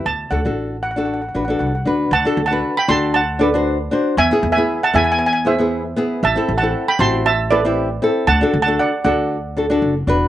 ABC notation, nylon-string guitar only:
X:1
M:4/4
L:1/16
Q:"Swing 16ths" 1/4=117
K:Dmix
V:1 name="Nylon-string guitar"
z2 [DFA] [DFA]2 z2 [DFA]2 z [DFB] [DFA]2 z [DFB]2 | z [DFA] z [DFB]2 z [DFA]2 z2 [DFA] [DFc]2 z [DFc]2 | z [B,E^G] z [B,EG]2 z [B,EG]2 z2 [B,EG] [B,EG]2 z [B,EG]2 | z [CEA] z [CEA]2 z [CEF]2 z2 [CEA] [CEG]2 z [CEA]2 |
z [DFA] z [DFA]2 z [DFA]2 z2 [DFA] [DFA]2 z [DFB]2 |]